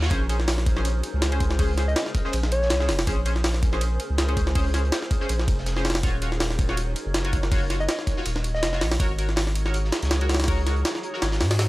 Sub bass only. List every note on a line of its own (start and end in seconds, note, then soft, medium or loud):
0.11 1.02 A#1 loud
1.14 1.95 C#2 medium
2.33 2.72 A#1 loud
2.70 2.90 C2 loud
2.89 3.06 F1 loud
3.07 3.99 A#1 loud
4.10 4.91 C#2 medium
5.29 5.49 A#1 loud
5.48 6.02 F1 loud
6.03 6.95 D#1 loud
7.06 7.87 F#1 medium
8.26 8.64 D#1 loud
8.63 8.83 F1 loud
8.81 8.98 A#1 loud
9.00 9.91 G#1 loud
10.03 10.84 C#2 medium
11.22 11.42 G#1 loud
11.41 11.69 G#2 loud